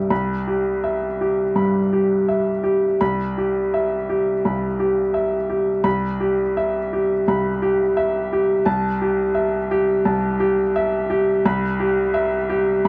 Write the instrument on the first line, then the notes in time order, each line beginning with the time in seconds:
upright piano
Already playing: C2 G2 G4 E5 A5
0.10 C2 B5
0.47 G4
0.84 E5
1.21 G4
1.56 G2 B5
1.93 G4
2.28 E5
2.63 G4
3.01 C2 B5
3.38 G4
3.74 E5
4.09 G4
4.45 C2 B5
4.79 G4
5.14 E5
5.49 G4
5.84 C2 B5
6.20 G4
6.57 E5
6.93 G4
7.28 C2 B5
7.62 G4
7.97 E5
8.33 G4
8.65 C2 A5
9.02 G4
9.35 E5
9.71 G4
10.05 C2 A5
10.40 G4
10.76 E5
11.10 G4
11.46 C2 B5
11.80 G4
12.14 E5
12.49 G4
12.85 G2 B5